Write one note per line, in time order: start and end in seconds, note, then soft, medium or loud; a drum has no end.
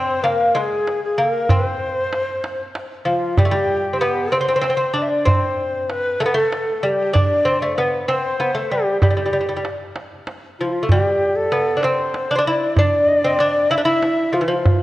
0.00 0.23 C4 medium
0.00 0.25 C5 medium
0.23 0.56 A#3 medium
0.23 0.58 A#4 medium
0.23 tombak tek medium
0.55 1.14 G#3 medium
0.55 1.03 G#4 medium
0.55 tombak tek medium
0.88 tombak tek medium
1.04 1.21 G#4 medium
1.18 1.50 A#3 medium
1.18 1.54 A#4 medium
1.18 tombak ka soft
1.49 2.71 C4 medium
1.49 2.77 C5 medium
1.49 tombak dum medium
2.13 tombak tek medium
2.44 tombak tek medium
2.75 tombak tek medium
3.05 3.38 F3 medium
3.05 3.40 F4 medium
3.05 tombak ka soft
3.38 3.45 G3 medium
3.38 3.52 G4 medium
3.38 tombak dum medium
3.45 3.52 A3 medium
3.51 4.02 G3 medium
3.51 4.35 G4 medium
3.93 4.00 C4 medium
4.01 4.32 B3 medium
4.01 tombak tek medium
4.32 4.40 C4 medium
4.32 4.96 C5 medium
4.32 tombak tek medium
4.41 4.47 C4 medium
4.48 4.55 C4 medium
4.56 4.60 C4 medium
4.61 4.69 C4 medium
4.61 tombak tek medium
4.70 4.76 C4 medium
4.77 4.85 C4 medium
4.94 5.23 D4 medium
4.94 5.04 D5 medium
4.94 tombak ka soft
5.02 5.11 E5 medium
5.09 5.30 D5 medium
5.25 6.20 C4 medium
5.25 5.91 C5 medium
5.25 tombak dum medium
5.90 6.23 B4 medium
5.90 tombak tek medium
6.20 6.25 A3 medium
6.20 6.35 A4 medium
6.20 tombak tek medium
6.26 6.33 B3 medium
6.34 6.83 A3 medium
6.34 6.86 A4 medium
6.52 tombak tek medium
6.83 7.15 G3 medium
6.83 7.16 G4 medium
6.83 tombak ka soft
7.13 7.46 D4 medium
7.13 7.81 D5 medium
7.13 tombak dum medium
7.45 7.61 C4 medium
7.62 7.77 A3 medium
7.78 8.08 B3 medium
7.78 tombak tek medium
8.08 8.39 C4 medium
8.08 8.73 C5 medium
8.08 tombak tek medium
8.40 8.54 B3 medium
8.40 tombak tek medium
8.55 8.71 A3 medium
8.71 9.02 G3 medium
8.71 9.01 G4 medium
8.71 tombak ka soft
9.01 9.09 G3 medium
9.01 9.68 G4 medium
9.01 tombak dum medium
9.11 9.16 G3 medium
9.17 9.24 G3 medium
9.26 9.32 G3 medium
9.33 9.39 G3 medium
9.41 9.47 G3 soft
9.49 9.55 G3 medium
9.57 9.62 G3 medium
9.65 tombak tek medium
9.96 tombak tek medium
10.27 tombak tek medium
10.59 10.82 F3 medium
10.59 10.67 F4 medium
10.65 10.74 E4 soft
10.72 10.88 F4 medium
10.83 10.89 A3 medium
10.88 11.55 G3 medium
10.88 11.38 G4 medium
10.88 tombak dum medium
11.36 11.83 A4 medium
11.52 11.77 B3 medium
11.52 tombak tek medium
11.77 11.83 D4 medium
11.81 12.32 C4 medium
11.81 12.39 C5 medium
11.81 tombak tek medium
12.14 tombak tek medium
12.31 12.34 D4 medium
12.35 12.38 C4 medium
12.35 12.46 D4 medium
12.35 12.76 D5 medium
12.45 12.78 E4 medium
12.45 tombak ka soft
12.76 13.24 D4 medium
12.76 13.72 D5 medium
12.76 tombak dum medium
13.24 13.40 C4 medium
13.39 13.70 D4 medium
13.39 tombak tek medium
13.70 13.77 E4 medium
13.70 13.83 E5 medium
13.70 tombak tek medium
13.78 13.84 D4 medium
13.84 14.35 E4 loud
13.84 14.35 E5 medium
14.02 tombak tek medium
14.33 14.39 F3 medium
14.33 14.47 F4 medium
14.33 tombak ka soft
14.41 14.47 E3 medium
14.48 14.83 F3 medium
14.48 14.83 F4 medium
14.66 tombak dum medium